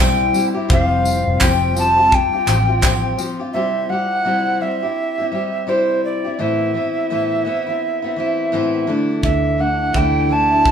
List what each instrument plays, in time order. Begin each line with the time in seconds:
Already playing: fingered electric bass B1, ambient pad G3 C4 E4
0.00 steel-string acoustic guitar G3 C4 E4 G4, recorder G5
0.33 steel-string acoustic guitar G3 C4 E4 G4, tambourine
0.54 steel-string acoustic guitar C4 E4 G4
0.69 fingered electric bass F1, steel-string acoustic guitar F3 C4 F4 G4, ambient pad F4, kick
0.73 recorder F5
1.05 tambourine
1.27 fingered electric bass F1
1.40 fingered electric bass F1, steel-string acoustic guitar F3 C4 F4 G4, recorder G5, kick, clap, tambourine
1.75 steel-string acoustic guitar F3 C4 F4 G4, tambourine
1.79 recorder A5
1.97 steel-string acoustic guitar C4 F4 G4
2.12 recorder G5, kick
2.33 steel-string acoustic guitar C4 F4 G4
2.46 fingered electric bass A1, steel-string acoustic guitar F3 C4 F4 G4, clap, tambourine
2.67 steel-string acoustic guitar C4 F4 G4
2.81 steel-string acoustic guitar F3 C4 F4 G4, kick, clap, tambourine
3.18 steel-string acoustic guitar F3 C4 F4 G4, tambourine
3.40 steel-string acoustic guitar C4 F4 G4
3.53 steel-string acoustic guitar C3 G3 C4 E4 G4, recorder E5
3.89 steel-string acoustic guitar G3 C4 E4 G4, recorder F#5
4.25 steel-string acoustic guitar C3 G3 C4 E4 G4
4.61 steel-string acoustic guitar G3 C4 E4 G4, recorder E5
4.83 steel-string acoustic guitar C4 E4 G4
5.18 steel-string acoustic guitar C4 E4 G4
5.32 steel-string acoustic guitar G3 C4 E4 G4
5.67 steel-string acoustic guitar C3 G3 C4 E4 G4, recorder C5
6.05 recorder D5
6.24 steel-string acoustic guitar C4 E4 G4
6.39 steel-string acoustic guitar A2 E3 B3 C4 E4, recorder E5
6.74 steel-string acoustic guitar E3 B3 C4 E4
7.10 steel-string acoustic guitar A2 E3 B3 C4 E4
7.45 steel-string acoustic guitar E3 B3 C4 E4
7.67 steel-string acoustic guitar B3 C4 E4
8.02 steel-string acoustic guitar B3 C4 E4
8.16 steel-string acoustic guitar E3 B3 C4 E4
8.52 steel-string acoustic guitar A2 E3 B3 C4 E4
8.87 steel-string acoustic guitar D3 E3 A3 D4 E4
9.23 fingered electric bass D2, recorder E5, kick
9.58 steel-string acoustic guitar E3 A3 D4 E4, recorder F#5
9.93 fingered electric bass D2, steel-string acoustic guitar D3 E3 A3 D4 E4, recorder G5, kick
10.29 steel-string acoustic guitar E3 A3 D4 E4, recorder A5
10.51 steel-string acoustic guitar A3 D4 E4
10.65 kick